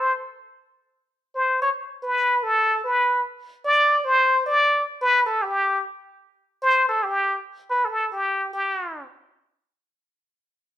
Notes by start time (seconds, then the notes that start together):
0.00 C5
1.35 C5
1.62 C#5
2.03 B4
2.43 A4
2.84 B4
3.65 D5
4.05 C5
4.46 D5
5.02 B4
5.26 A4
5.42 G4
6.63 C5
6.89 A4
7.03 G4
7.70 B4
7.85 A4
8.12 G4
8.53 G4